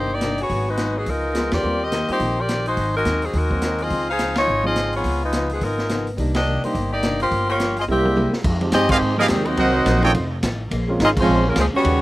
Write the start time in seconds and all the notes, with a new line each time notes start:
Already playing: G1 C3 D#3 A#3 D4 D#4 G4 C5
0.13 A#3 D#4 G4 D5
0.21 C3 D#3 A#3 D4, snare, closed hi-hat
0.38 B3 F#4 G#4 C#5, open hi-hat
0.49 G#1 G#2 F#3 B3 D#4, kick, open hi-hat
0.69 G#3 D#4 F#4 B4
0.77 G#2 F#3 B3 D#4, snare, closed hi-hat
0.98 F#3 B3 D#4 G#4
1.06 C#2 C#3 F3 G#3 B3 D#4 F4 A#4, kick, open hi-hat
1.34 C#3 F3 G#3 B3 D#4 F4, snare, closed hi-hat
1.51 E2 C4 G4 A#4 D5, snare, ride
1.62 D#2 D#3 G3 A#3 C4 F4 G4
1.83 C4 G4 A#4 D#5
1.92 D#3 A#3 C4 G4, snare, closed hi-hat
2.08 G3 A#3 C4 D#4 F4 G4 C5, muted upright bass stroke, open hi-hat
2.20 A#1 D#3 A#3 C4 G4, kick, open hi-hat
2.40 C4 G4 A#4 D5
2.48 D#3 A#3 C4 G4, snare, closed hi-hat
2.66 G#3 D#4 F#4 C5, open hi-hat
2.76 G#1 G#2 F#3 C4 D#4, kick, open hi-hat
2.97 G#3 D#4 F#4 A#4
3.05 D#2 G#2 F#3 C4 D#4, snare, closed hi-hat
3.22 F#3 C4 D#4 G#4, open hi-hat
3.33 D#2 G#2 F#3 G#3 C4 D#4 F#4 A#4, kick, open hi-hat
3.50 F#3 A#3 C4 D#4, kick
3.61 G#2 F#3 C4 D#4, snare, closed hi-hat
3.78 C4 F4 G#4, open hi-hat
3.83 D#5
3.90 C#2 C#3 F3 C4 D#4, kick, open hi-hat
4.10 D#4 G#4 C5 F5
4.18 C#3 F3 C4 D#4, snare, closed hi-hat
4.35 G#3 D#4 F4 C#5, snare, ride
4.47 G#1 C#3 F3 C4 D#4
4.64 F3 G#3 C4 D#4 F4 G#4 D#5
4.75 C#3 F3 C4 D#4, snare, closed hi-hat
4.93 B3 F4 C#5, open hi-hat
4.97 G#4
5.03 C#2 C#3 F3 B3 D#4, kick, open hi-hat
5.24 G#3 D#4 F4 B4
5.32 C#3 F3 B3 D#4, snare, closed hi-hat
5.49 F3 B3 D#4 G#4, open hi-hat
5.61 G#1 C#3 F3 G#3 B3 D#4 F4 A#4, kick, open hi-hat
5.78 snare
5.89 C#3 F3 B3 D#4, snare, closed hi-hat
6.07 open hi-hat
6.17 C2 C3 D#3 G3 A#3 D4 D#4, kick, open hi-hat
6.34 A#3 D4 G4 D#5, snare, ride
6.46 C3 D#3 A#3 D4
6.63 G3 A#3 D4 D#4 G4 C5, muted upright bass stroke, open hi-hat
6.74 G1 C3 D#3 A#3 D4, kick, open hi-hat
6.93 A#3 D#4 G4 D5
7.02 C3 D#3 A#3 D4, snare, closed hi-hat
7.20 A#3 F4 G4 C5, open hi-hat
7.30 G1 G2 F3 A#3 C#4, kick, open hi-hat
7.50 A#3 F4 G4 C#5
7.58 G2 F3 A#3 C#4, snare, closed hi-hat
7.77 C4 F4 G#4 D#5, open hi-hat
7.87 C2 C3 G3 G#3 A#3 C4 E4 G4 A#4 E5, high tom
8.05 G#3 A#3 E4 G4, high tom
8.15 C3 G#3 A#3 E4, high tom
8.33 snare
8.43 F2 F3 G#3 D#4 G4, kick, crash
8.61 F3 G#3 C4 D#4 G4, ride
8.72 G2 F3 G#3 C4 D#4 G4 G#4 D#5, kick, snare, hi-hat pedal, ride
8.89 D#3 G#3 C4 D#4 G4 G#4 C5 D#5 F5, kick, crash
9.00 G#2 F3 G#3 D#4 G4
9.18 F3 G3 G#3 A#3 C4 D#4 G4 G#4 A#4 D#5 F5
9.28 D#2 C3 D#3 F3 G3 G#3 C4 D#4 G4 G#4, kick, snare, hi-hat pedal, ride
9.45 D#3 F#3 A#3 C4 D#4 F#4 C5, ride
9.57 C2 C3 F#3 A#3 C4 D#4 F#4 A#4 C5 D#5 F#5, kick, ride
9.85 A#1 C3 F#3 A#3 D#4, kick, snare, hi-hat pedal, ride
10.02 A3 C4 C#4 D#4 F4 A4 C#5 D#5 G5, ride
10.13 F1 F2 D#3 A3 C#4, kick, ride
10.42 A1 F2 D#3 A3 C#4, kick, snare, hi-hat pedal, ride
10.71 A#1 A#3 C#4 G#4 C5, kick, ride
10.88 G#3 A#3 C4 C#4 F4
11.00 G#1 A#3 C#4 D#4 G#4 C5, kick, snare, hi-hat pedal, ride
11.04 C4 F4 G#4 D#5
11.17 F3 G#3 C4 C#4 C5, kick, crash
11.21 F4
11.28 A#1 A#3 C#4 G#4 C5
11.47 C#3 F3 G#3 A#3 C#4 F4 A#4
11.56 C#2 C#3 F3 G#3 A#3 C#4 G#4 C5, kick, snare, hi-hat pedal, ride
11.60 F3 C4 G#4
11.74 C#3 G3 B3 C#4 F#4 G4 C#5, muted upright bass stroke
11.84 D#2 D#3 B3 C#4 G4, kick, ride